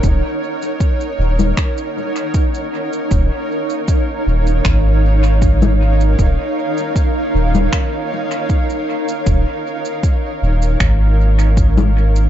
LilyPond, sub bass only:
\new Staff \with { instrumentName = "Sub bass" } { \clef bass \time 4/4 \key ees \minor \tempo 4 = 78 ees,,8 r4 ees,,8 r2 | ees,,8 r4 ees,,8 aes,,2 | ees,,8 r4 ees,,8 r2 | ees,,8 r4 ees,,8 aes,,2 | }